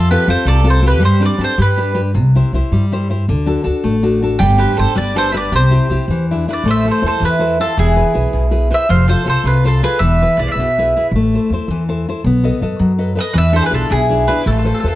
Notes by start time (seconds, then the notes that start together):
Already playing: F2 F3
0.11 C4 F4 G4 A4 B4
0.28 F2 C4 F4 A4 C5
0.45 C2 C3 A4 D5
0.64 C4 F4 A4
0.70 C5
0.82 C4 F4 A4
0.86 G4 B4
1.00 G2 G3 G4
1.05 C5
1.19 C4 D4 G4 B4
1.25 D5
1.38 G2 C4 D4 G4 A4
1.44 C5
1.58 G2 G3 G4
1.62 B4
1.77 D4 G4 B4
1.94 D4 G4 B4
2.14 C2 C3
2.35 E4 G4 C5
2.53 C2 E4 G4 C5
2.72 G2 G3
2.92 E4 G4 C5
3.10 E4 G4 C5
3.28 D2 D3
3.46 D4 F#4 A4
3.64 D2 D4 F#4 A4
3.84 A1 A3
4.03 D4 F#4 A4
4.22 D4 F#4 A4
4.39 G1 G3 D4 G4
4.58 D4 G4 B4 C5
4.76 G1 D4 G4 A4 C5
4.95 G1 G3 B4 D5
5.15 D4 G4 A4 B4 C5
5.29 C5 E5
5.34 D4 G4 B4 D5
5.52 C2 C3 G4 C5
5.71 C4 E4 G4
5.90 C2 C4 E4 G4
6.08 E2 E3
6.31 D4 E4 G#4
6.48 D4 E4 G#4 B4
6.53 D5
6.64 A1 A3 C5
6.71 E5
6.83 E4 A4 C5
6.91 C5
7.02 E2 E4 A4 C5
7.06 A4 C5
7.20 E2 E3
7.25 E4 B4
7.39 E4 A4 C5
7.60 E4 F4 A4 C5
7.77 E1 E3 E4 G#4
7.96 E4 G#4 B4
8.14 B1 E4 G#4 B4
8.33 B1 B2
8.51 E4 G#4 B4
8.70 E4 G#4 B4 C5 E5
8.89 F1 F3 C5 F5
9.08 F4 A4 C5
9.26 C2 F4 A4 C5
9.44 C2 C3 F4 B4
9.64 F4 A4 C5
9.83 F4 G#4 A4 B4 C5
9.99 E1 E3 B4 E5
10.22 E4 G#4 B4
10.37 B1 E4 G#4 B4 D5
10.47 D5 F5
10.52 B1 B4 E5
10.60 B2
10.78 E4 G#4 B4
10.96 E4 G#4 B4
11.11 A1 A3
11.34 E4 A4 C5
11.50 E2 E4 A4 C5
11.68 E2 E3
11.89 E4 A4 C5
12.08 E4 A4 C5
12.24 B1 B3
12.44 A4 B4 D#5
12.61 F#2 A4 B4 D#5
12.79 F#2 F#3
12.98 A4 B4 D#5
13.15 A4 B4 D#5
13.20 D#5
13.33 E2 E3 B4
13.38 E5
13.52 D4 E4 G#4 A4 C5
13.63 G#4 B4
13.70 B1 D4 E4 F4 G#4
13.75 A4
13.90 B1 B2 E4 G#4
14.09 D4 E4 G#4
14.27 D4 E4 G#4 B4
14.43 A1 A3 E4 A4
14.51 F4 A4
14.57 F4 A4
14.65 F4 A4 B4 C5
14.74 F4 A4
14.80 E2 F4 A4
14.84 A4 B4 C5
14.89 F4